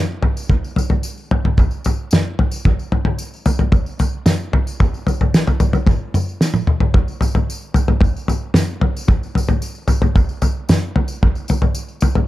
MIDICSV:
0, 0, Header, 1, 2, 480
1, 0, Start_track
1, 0, Tempo, 536673
1, 439, Time_signature, 4, 2, 24, 8
1, 10981, End_track
2, 0, Start_track
2, 0, Title_t, "Drums"
2, 201, Note_on_c, 9, 43, 81
2, 291, Note_off_c, 9, 43, 0
2, 329, Note_on_c, 9, 54, 64
2, 419, Note_off_c, 9, 54, 0
2, 443, Note_on_c, 9, 36, 109
2, 444, Note_on_c, 9, 43, 83
2, 532, Note_off_c, 9, 36, 0
2, 534, Note_off_c, 9, 43, 0
2, 576, Note_on_c, 9, 54, 26
2, 666, Note_off_c, 9, 54, 0
2, 682, Note_on_c, 9, 43, 79
2, 701, Note_on_c, 9, 54, 70
2, 771, Note_off_c, 9, 43, 0
2, 790, Note_off_c, 9, 54, 0
2, 804, Note_on_c, 9, 43, 79
2, 894, Note_off_c, 9, 43, 0
2, 923, Note_on_c, 9, 54, 89
2, 1012, Note_off_c, 9, 54, 0
2, 1050, Note_on_c, 9, 54, 27
2, 1140, Note_off_c, 9, 54, 0
2, 1174, Note_on_c, 9, 43, 87
2, 1263, Note_off_c, 9, 43, 0
2, 1297, Note_on_c, 9, 43, 80
2, 1386, Note_off_c, 9, 43, 0
2, 1408, Note_on_c, 9, 54, 26
2, 1412, Note_on_c, 9, 36, 111
2, 1423, Note_on_c, 9, 43, 86
2, 1497, Note_off_c, 9, 54, 0
2, 1501, Note_off_c, 9, 36, 0
2, 1513, Note_off_c, 9, 43, 0
2, 1528, Note_on_c, 9, 54, 28
2, 1617, Note_off_c, 9, 54, 0
2, 1649, Note_on_c, 9, 54, 80
2, 1663, Note_on_c, 9, 43, 73
2, 1739, Note_off_c, 9, 54, 0
2, 1752, Note_off_c, 9, 43, 0
2, 1885, Note_on_c, 9, 54, 95
2, 1903, Note_on_c, 9, 47, 75
2, 1906, Note_on_c, 9, 38, 76
2, 1975, Note_off_c, 9, 54, 0
2, 1993, Note_off_c, 9, 47, 0
2, 1995, Note_off_c, 9, 38, 0
2, 2137, Note_on_c, 9, 43, 80
2, 2226, Note_off_c, 9, 43, 0
2, 2248, Note_on_c, 9, 54, 75
2, 2338, Note_off_c, 9, 54, 0
2, 2372, Note_on_c, 9, 36, 112
2, 2375, Note_on_c, 9, 43, 80
2, 2462, Note_off_c, 9, 36, 0
2, 2464, Note_off_c, 9, 43, 0
2, 2498, Note_on_c, 9, 54, 28
2, 2588, Note_off_c, 9, 54, 0
2, 2612, Note_on_c, 9, 43, 79
2, 2701, Note_off_c, 9, 43, 0
2, 2727, Note_on_c, 9, 43, 80
2, 2817, Note_off_c, 9, 43, 0
2, 2849, Note_on_c, 9, 54, 91
2, 2938, Note_off_c, 9, 54, 0
2, 2984, Note_on_c, 9, 54, 26
2, 3073, Note_off_c, 9, 54, 0
2, 3091, Note_on_c, 9, 54, 69
2, 3093, Note_on_c, 9, 43, 89
2, 3180, Note_off_c, 9, 54, 0
2, 3182, Note_off_c, 9, 43, 0
2, 3212, Note_on_c, 9, 43, 78
2, 3301, Note_off_c, 9, 43, 0
2, 3327, Note_on_c, 9, 43, 86
2, 3329, Note_on_c, 9, 54, 24
2, 3330, Note_on_c, 9, 36, 107
2, 3416, Note_off_c, 9, 43, 0
2, 3419, Note_off_c, 9, 54, 0
2, 3420, Note_off_c, 9, 36, 0
2, 3455, Note_on_c, 9, 54, 25
2, 3545, Note_off_c, 9, 54, 0
2, 3571, Note_on_c, 9, 54, 66
2, 3575, Note_on_c, 9, 43, 78
2, 3660, Note_off_c, 9, 54, 0
2, 3665, Note_off_c, 9, 43, 0
2, 3808, Note_on_c, 9, 47, 74
2, 3810, Note_on_c, 9, 54, 79
2, 3811, Note_on_c, 9, 38, 73
2, 3898, Note_off_c, 9, 47, 0
2, 3900, Note_off_c, 9, 38, 0
2, 3900, Note_off_c, 9, 54, 0
2, 4054, Note_on_c, 9, 43, 82
2, 4144, Note_off_c, 9, 43, 0
2, 4177, Note_on_c, 9, 54, 56
2, 4267, Note_off_c, 9, 54, 0
2, 4295, Note_on_c, 9, 43, 83
2, 4296, Note_on_c, 9, 36, 109
2, 4301, Note_on_c, 9, 54, 21
2, 4384, Note_off_c, 9, 43, 0
2, 4385, Note_off_c, 9, 36, 0
2, 4391, Note_off_c, 9, 54, 0
2, 4420, Note_on_c, 9, 54, 22
2, 4509, Note_off_c, 9, 54, 0
2, 4531, Note_on_c, 9, 43, 78
2, 4545, Note_on_c, 9, 54, 57
2, 4621, Note_off_c, 9, 43, 0
2, 4634, Note_off_c, 9, 54, 0
2, 4660, Note_on_c, 9, 43, 82
2, 4749, Note_off_c, 9, 43, 0
2, 4778, Note_on_c, 9, 54, 75
2, 4780, Note_on_c, 9, 38, 78
2, 4867, Note_off_c, 9, 54, 0
2, 4869, Note_off_c, 9, 38, 0
2, 4897, Note_on_c, 9, 43, 74
2, 4898, Note_on_c, 9, 54, 23
2, 4986, Note_off_c, 9, 43, 0
2, 4987, Note_off_c, 9, 54, 0
2, 5008, Note_on_c, 9, 54, 61
2, 5009, Note_on_c, 9, 43, 86
2, 5097, Note_off_c, 9, 54, 0
2, 5098, Note_off_c, 9, 43, 0
2, 5127, Note_on_c, 9, 43, 85
2, 5140, Note_on_c, 9, 54, 23
2, 5217, Note_off_c, 9, 43, 0
2, 5229, Note_off_c, 9, 54, 0
2, 5246, Note_on_c, 9, 43, 84
2, 5252, Note_on_c, 9, 36, 112
2, 5262, Note_on_c, 9, 54, 24
2, 5336, Note_off_c, 9, 43, 0
2, 5342, Note_off_c, 9, 36, 0
2, 5352, Note_off_c, 9, 54, 0
2, 5494, Note_on_c, 9, 47, 74
2, 5497, Note_on_c, 9, 54, 66
2, 5583, Note_off_c, 9, 47, 0
2, 5587, Note_off_c, 9, 54, 0
2, 5624, Note_on_c, 9, 54, 26
2, 5714, Note_off_c, 9, 54, 0
2, 5732, Note_on_c, 9, 38, 57
2, 5741, Note_on_c, 9, 54, 86
2, 5821, Note_off_c, 9, 38, 0
2, 5831, Note_off_c, 9, 54, 0
2, 5847, Note_on_c, 9, 48, 60
2, 5866, Note_on_c, 9, 54, 26
2, 5936, Note_off_c, 9, 48, 0
2, 5955, Note_off_c, 9, 54, 0
2, 5968, Note_on_c, 9, 45, 77
2, 6057, Note_off_c, 9, 45, 0
2, 6086, Note_on_c, 9, 43, 82
2, 6175, Note_off_c, 9, 43, 0
2, 6208, Note_on_c, 9, 43, 87
2, 6210, Note_on_c, 9, 36, 109
2, 6297, Note_off_c, 9, 43, 0
2, 6300, Note_off_c, 9, 36, 0
2, 6332, Note_on_c, 9, 54, 26
2, 6422, Note_off_c, 9, 54, 0
2, 6446, Note_on_c, 9, 43, 74
2, 6458, Note_on_c, 9, 54, 71
2, 6536, Note_off_c, 9, 43, 0
2, 6548, Note_off_c, 9, 54, 0
2, 6573, Note_on_c, 9, 43, 76
2, 6663, Note_off_c, 9, 43, 0
2, 6706, Note_on_c, 9, 54, 91
2, 6795, Note_off_c, 9, 54, 0
2, 6926, Note_on_c, 9, 43, 86
2, 6939, Note_on_c, 9, 54, 67
2, 7015, Note_off_c, 9, 43, 0
2, 7028, Note_off_c, 9, 54, 0
2, 7050, Note_on_c, 9, 43, 81
2, 7139, Note_off_c, 9, 43, 0
2, 7160, Note_on_c, 9, 43, 86
2, 7168, Note_on_c, 9, 36, 107
2, 7193, Note_on_c, 9, 54, 24
2, 7250, Note_off_c, 9, 43, 0
2, 7257, Note_off_c, 9, 36, 0
2, 7282, Note_off_c, 9, 54, 0
2, 7303, Note_on_c, 9, 54, 27
2, 7392, Note_off_c, 9, 54, 0
2, 7408, Note_on_c, 9, 43, 74
2, 7417, Note_on_c, 9, 54, 69
2, 7497, Note_off_c, 9, 43, 0
2, 7506, Note_off_c, 9, 54, 0
2, 7638, Note_on_c, 9, 47, 74
2, 7641, Note_on_c, 9, 38, 76
2, 7657, Note_on_c, 9, 54, 85
2, 7727, Note_off_c, 9, 47, 0
2, 7730, Note_off_c, 9, 38, 0
2, 7747, Note_off_c, 9, 54, 0
2, 7883, Note_on_c, 9, 43, 82
2, 7973, Note_off_c, 9, 43, 0
2, 8018, Note_on_c, 9, 54, 65
2, 8108, Note_off_c, 9, 54, 0
2, 8124, Note_on_c, 9, 43, 84
2, 8127, Note_on_c, 9, 36, 112
2, 8213, Note_off_c, 9, 43, 0
2, 8216, Note_off_c, 9, 36, 0
2, 8257, Note_on_c, 9, 54, 25
2, 8347, Note_off_c, 9, 54, 0
2, 8365, Note_on_c, 9, 43, 76
2, 8386, Note_on_c, 9, 54, 66
2, 8454, Note_off_c, 9, 43, 0
2, 8476, Note_off_c, 9, 54, 0
2, 8484, Note_on_c, 9, 43, 82
2, 8573, Note_off_c, 9, 43, 0
2, 8603, Note_on_c, 9, 54, 80
2, 8692, Note_off_c, 9, 54, 0
2, 8719, Note_on_c, 9, 54, 25
2, 8809, Note_off_c, 9, 54, 0
2, 8833, Note_on_c, 9, 43, 84
2, 8834, Note_on_c, 9, 54, 63
2, 8923, Note_off_c, 9, 43, 0
2, 8924, Note_off_c, 9, 54, 0
2, 8959, Note_on_c, 9, 43, 80
2, 9049, Note_off_c, 9, 43, 0
2, 9080, Note_on_c, 9, 54, 26
2, 9083, Note_on_c, 9, 43, 87
2, 9084, Note_on_c, 9, 36, 108
2, 9169, Note_off_c, 9, 54, 0
2, 9173, Note_off_c, 9, 36, 0
2, 9173, Note_off_c, 9, 43, 0
2, 9203, Note_on_c, 9, 54, 26
2, 9292, Note_off_c, 9, 54, 0
2, 9317, Note_on_c, 9, 54, 73
2, 9319, Note_on_c, 9, 43, 76
2, 9406, Note_off_c, 9, 54, 0
2, 9409, Note_off_c, 9, 43, 0
2, 9558, Note_on_c, 9, 54, 87
2, 9564, Note_on_c, 9, 47, 76
2, 9567, Note_on_c, 9, 38, 74
2, 9647, Note_off_c, 9, 54, 0
2, 9653, Note_off_c, 9, 47, 0
2, 9656, Note_off_c, 9, 38, 0
2, 9800, Note_on_c, 9, 43, 77
2, 9889, Note_off_c, 9, 43, 0
2, 9909, Note_on_c, 9, 54, 69
2, 9999, Note_off_c, 9, 54, 0
2, 10042, Note_on_c, 9, 43, 87
2, 10043, Note_on_c, 9, 36, 102
2, 10132, Note_off_c, 9, 36, 0
2, 10132, Note_off_c, 9, 43, 0
2, 10154, Note_on_c, 9, 54, 26
2, 10243, Note_off_c, 9, 54, 0
2, 10268, Note_on_c, 9, 54, 73
2, 10284, Note_on_c, 9, 43, 75
2, 10358, Note_off_c, 9, 54, 0
2, 10373, Note_off_c, 9, 43, 0
2, 10391, Note_on_c, 9, 43, 80
2, 10481, Note_off_c, 9, 43, 0
2, 10506, Note_on_c, 9, 54, 92
2, 10595, Note_off_c, 9, 54, 0
2, 10629, Note_on_c, 9, 54, 27
2, 10718, Note_off_c, 9, 54, 0
2, 10737, Note_on_c, 9, 54, 74
2, 10753, Note_on_c, 9, 43, 88
2, 10827, Note_off_c, 9, 54, 0
2, 10843, Note_off_c, 9, 43, 0
2, 10870, Note_on_c, 9, 43, 81
2, 10960, Note_off_c, 9, 43, 0
2, 10981, End_track
0, 0, End_of_file